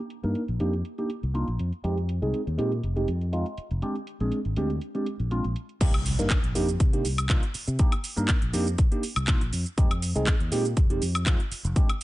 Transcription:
0.10 closed hi-hat
0.23 G2 A#3 D4 D#4 A#4, closed hi-hat
0.35 closed hi-hat
0.48 A#1, closed hi-hat
0.60 F2 A#3 D4 D#4 G4, closed hi-hat
0.73 closed hi-hat
0.85 closed hi-hat
0.98 A#3 D4 D#4 G4, closed hi-hat
1.10 closed hi-hat
1.23 C2, closed hi-hat
1.34 A#3 D4 D#4 F4, closed hi-hat
1.48 A#1, closed hi-hat
1.59 F2, closed hi-hat
1.72 closed hi-hat
1.84 F2 G#3 C4 D#4 G4, closed hi-hat
1.98 closed hi-hat
2.09 closed hi-hat
2.22 C2 G#3 C4 D#4 G#4, closed hi-hat
2.34 closed hi-hat
2.47 D#2, closed hi-hat
2.58 A#2 G#3 C4 D#4 G4, closed hi-hat
2.72 closed hi-hat
2.83 F1, closed hi-hat
2.96 G#3 C4 D#4 G4, closed hi-hat
3.08 F2, closed hi-hat
3.21 closed hi-hat
3.32 G#3 C4 D#4 F4, closed hi-hat
3.46 closed hi-hat
3.57 muted fingered electric bass stroke, closed hi-hat
3.71 F1, closed hi-hat
3.82 G#3 C4 D4 G4, closed hi-hat
3.95 closed hi-hat
4.07 closed hi-hat
4.20 A#1 G#3 C4 D4 G#4, closed hi-hat
4.32 closed hi-hat
4.45 G#1, closed hi-hat
4.56 D2 G#3 C4 D4 G4, closed hi-hat
4.70 closed hi-hat
4.81 closed hi-hat
4.95 G#3 C4 D4 G4, closed hi-hat
5.06 closed hi-hat
5.19 A#1, closed hi-hat
5.31 G#3 C4 D4 F4, closed hi-hat
5.44 A#1, closed hi-hat
5.56 closed hi-hat
5.69 closed hi-hat
5.81 C2 A#3 D4 D#4 G4, kick, closed hi-hat, crash, impact, shaker
5.94 closed hi-hat, high woodblock
6.06 open hi-hat, shaker
6.19 G2 A#3 D4 D#4 A#4, closed hi-hat, shaker
6.30 kick, clap, closed hi-hat, shaker
6.44 A#1, closed hi-hat
6.55 F2 A#3 D4 D#4 G4, open hi-hat, shaker
6.68 closed hi-hat, shaker
6.80 C3, kick, closed hi-hat, shaker
6.93 A#3 D4 D#4 G4, closed hi-hat
7.05 C2, open hi-hat, shaker
7.18 closed hi-hat, high woodblock, shaker
7.29 A#3 D4 D#4 F4, kick, clap, closed hi-hat, shaker
7.43 closed hi-hat
7.54 muted fingered electric bass stroke, open hi-hat, shaker
7.67 C3, closed hi-hat, shaker
7.79 A#3 D4 D#4 G4, kick, closed hi-hat, shaker
7.92 closed hi-hat, high woodblock
8.04 open hi-hat, shaker
8.16 G2 A#3 D4 D#4 A#4, closed hi-hat, shaker
8.28 kick, clap, closed hi-hat, shaker
8.42 A#1, closed hi-hat
8.53 F2 A#3 D4 D#4 G4, open hi-hat, shaker
8.67 closed hi-hat, shaker
8.78 kick, closed hi-hat, shaker
8.91 A#3 D4 D#4 G4, closed hi-hat
9.03 open hi-hat, shaker
9.16 C2, closed hi-hat, high woodblock, shaker
9.27 A#3 D4 D#4 F4, kick, clap, closed hi-hat, shaker
9.41 A#1, closed hi-hat
9.53 F2, open hi-hat, shaker
9.66 closed hi-hat, shaker
9.77 F2 G#3 C4 D#4 G4, kick, closed hi-hat, shaker
9.91 closed hi-hat, high woodblock
10.02 open hi-hat, shaker
10.15 C2 G#3 C4 D#4 G#4, closed hi-hat, shaker
10.27 kick, clap, closed hi-hat, shaker
10.40 D#2, closed hi-hat
10.52 A#2 G#3 C4 D#4 G4, open hi-hat, shaker
10.65 closed hi-hat, shaker
10.77 F1, kick, closed hi-hat, shaker
10.90 G#3 C4 D#4 G4, closed hi-hat
11.02 F2, open hi-hat, shaker
11.15 closed hi-hat, high woodblock, shaker
11.26 G#3 C4 D#4 F4, kick, clap, closed hi-hat, shaker
11.40 closed hi-hat
11.51 muted fingered electric bass stroke, open hi-hat, shaker
11.64 F1, closed hi-hat, shaker
11.76 G#3 C4 D4 G4, kick, closed hi-hat, shaker
11.89 closed hi-hat, high woodblock

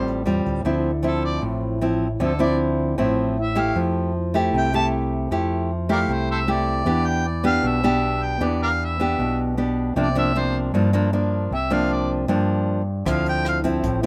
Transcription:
Already playing: A1 A2 G3 C4 F4 C5
0.07 closed hi-hat
0.26 E2 G3 C4 F4, closed hi-hat
0.45 D2, kick, closed hi-hat
0.64 D2 D3 F3 C4 E4
1.03 F3 C4 E4
1.07 A4
1.25 D5
1.42 A1 A2
1.81 F3 C4 E4
2.20 D2 D3 F3 C4 E4 A4
2.39 F3 C4 E4 D5
2.98 A1 A2 F3 C4 E4
3.41 E5
3.55 A3 E4 G4
3.60 F5
3.75 F2 F3
4.34 A3 E4 G4
4.53 C2 C3
4.58 G5
4.74 A3 E4 G4 A5
5.31 F2 F3 A3 E4 G4
5.89 A3 E4 G4 A#4 D5 F5
6.08 C2 C3
6.14 C5
6.31 A4 C5 E5
6.48 A3 E4 G4 D5
6.85 E2 E3 B3 D4 G4
7.07 G5
7.27 D5
7.44 B3 D4 G4 F5
7.63 B1 B2
7.67 E5
7.83 B3 D4 G4
8.23 G5
8.40 E2 E3 B3 D4 G4
8.45 D5
8.63 A#4 D5 F5
8.85 E5
9.00 B3 D4 G4
9.18 B1 B2
9.57 B3 D4 G4
9.96 C2 C3 F3 A#3 D4
10.01 D5
10.15 F3 A#3 D4 E5
10.36 F3 A#3 D4 C5
10.73 G2 F3 A#3 D4
10.93 F3 A#3 D4
11.13 F3 A#3 D4
11.51 C2 C3
11.55 E5
11.70 F3 A#3 D4 F5
11.93 D5
12.28 G2 F3 A#3 D4
13.05 D2 D3 F3 C4 E4, kick, cross-stick, closed hi-hat
13.10 F5
13.26 G5, closed hi-hat
13.45 F5, cross-stick, closed hi-hat
13.64 F3 C4 E4, kick, closed hi-hat
13.83 A1 A2, kick, closed hi-hat
14.03 closed hi-hat

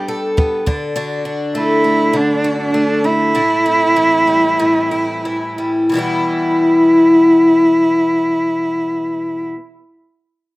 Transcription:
Already playing: G3 B3 D4
0.08 A4
0.37 B3, kick
0.66 D3, kick
0.96 D3 F#4
1.25 D4
1.55 A3 E4
1.84 A3
2.13 D3 D4
2.44 F#4
2.61 D4
2.74 A3
3.04 A3 E4
3.35 A2 E4
3.66 C4
3.96 E3
4.27 G3
4.59 A2
4.91 E4
5.25 E3
5.58 G3
5.89 E2 B2
5.94 E3 G3 B3 E4
5.98 E4

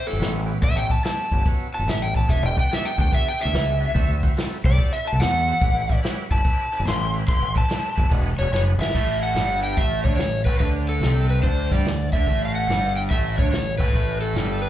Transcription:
0.07 B3 C#4 E4 G4 A4, snare, open hi-hat
0.13 G1
0.19 A1 B3 C#4 E4 F#4, snare, open hi-hat
0.46 B3 C#4 E4 G4, open hi-hat
0.60 A1 B3 C#4 E4 G4 E5, kick, open hi-hat
0.75 A1 G5
0.90 B3 C#4 E4 G4 A5, kick, open hi-hat
1.04 B3 C#4 E4 G4 A5, snare, open hi-hat
1.32 G1 B3 C#4 E4 G4, kick, open hi-hat
1.46 B3 C#4 E4 F#4, kick, open hi-hat
1.73 B3 C#4 E4 F#4 A5, open hi-hat
1.79 G1
1.86 A1 B3 C#4 E4 G4 E5, snare, open hi-hat
2.02 G5
2.15 B3 C#4 E4 G4 A5, kick, open hi-hat
2.28 E1 B3 D4 F#4 G#4 E5, kick, open hi-hat
2.42 E1 G5
2.57 B3 D4 F#4 B4 G5, kick, open hi-hat
2.70 B3 D4 F#4 G#4 E5, snare, open hi-hat
2.85 G5
2.98 D2 B3 D4 F#4 G#4 G5, kick, open hi-hat
3.10 B3 D4 F#4 G#4 E5, kick, open hi-hat
3.29 G5
3.39 B3 D4 F#4 G#4 E5, snare, open hi-hat
3.45 D2
3.53 C#2 B3 D4 F#4 G#4, snare, open hi-hat
3.80 B3 D4 F#4 G#4, open hi-hat
3.94 D2 C4 E4 F#4 A4, kick, open hi-hat
4.08 D2
4.23 C4 E4 F#4 C5, kick, open hi-hat
4.36 C4 E4 F#4 A4, snare, open hi-hat
4.64 C2 C4 E4 F#4 B4 D5, kick, open hi-hat
4.77 C4 E4 F#4 A4, kick, open hi-hat
4.93 E5
5.05 C4 E4 F#4 A4 A5, open hi-hat
5.13 C2
5.19 E2 C4 E4 F#4 A4 F#5, snare, open hi-hat
5.47 C4 E4 F#4 A4, open hi-hat
5.59 A1 C#4 E4 G4 B4, kick, open hi-hat
5.74 A1
5.89 C#4 E4 G4 B4, kick, open hi-hat
6.03 C#4 E4 G4 B4, snare, open hi-hat
6.30 G1 C#4 E4 G4 B4 A5, kick, open hi-hat
6.44 C#4 E4 G4 B4, kick, open hi-hat
6.72 C#4 E4 G4 B4, open hi-hat
6.80 G1
6.86 A1 C#4 E4 G4 B4 C6, snare, open hi-hat
7.13 C#4 E4 G4 B4, open hi-hat
7.27 A1 C#4 E4 G4 B4 C6, kick, open hi-hat
7.42 A1
7.54 C#4 E4 G4 B4 A5, kick, open hi-hat
7.68 C#4 E4 G4 B4, snare, open hi-hat
7.95 G1 C#4 E4 G4 B4, kick, open hi-hat
8.09 E1 D4 F#4 G#4 B4, kick, open hi-hat
8.38 E1 D4 F#4 G#4 B4 C#5, open hi-hat
8.51 F#1 D4 F#4 G#4 B4 C#5, snare
8.78 G#1 D4 F#4 G#4 B4 E5, snare
8.89 snare
8.94 A1 A2 A3, kick, crash
9.23 F#5, open hi-hat
9.35 G1 G2 G3, snare, open hi-hat
9.63 G5, open hi-hat
9.77 A1 A2 A3 E5, kick, open hi-hat
10.04 D2 D3 D4 C#5, kick, open hi-hat
10.16 A1 A2 C#5, snare, open hi-hat
10.45 A1 A2 A3 B4, kick, open hi-hat
10.60 D2 D3 D4 B4, kick, open hi-hat
10.89 A4, open hi-hat
11.00 C2 C3 C4, snare, open hi-hat
11.29 B4, open hi-hat
11.43 D2 D3 D4 C5, kick, open hi-hat
11.71 G2 G3 G4 D5, kick, snare, open hi-hat
11.85 D2 D3, snare, open hi-hat
12.13 D2 D3 D4 E5, kick, open hi-hat
12.27 A1 A2 A3, kick, open hi-hat
12.45 F5
12.55 F#5, open hi-hat
12.68 G1 G2 G3, snare, open hi-hat
12.97 G5, open hi-hat
13.10 A1 A2 A3 E5, kick, open hi-hat
13.38 D2 D3 D4 C#5, kick, open hi-hat
13.51 A1 A2 C#5, snare, open hi-hat
13.78 A1 A2 A3 B4, kick, open hi-hat
13.93 A1 A2 A3, kick, open hi-hat
14.22 A4, open hi-hat
14.34 G1 G2 G3, snare, open hi-hat
14.62 B4, open hi-hat

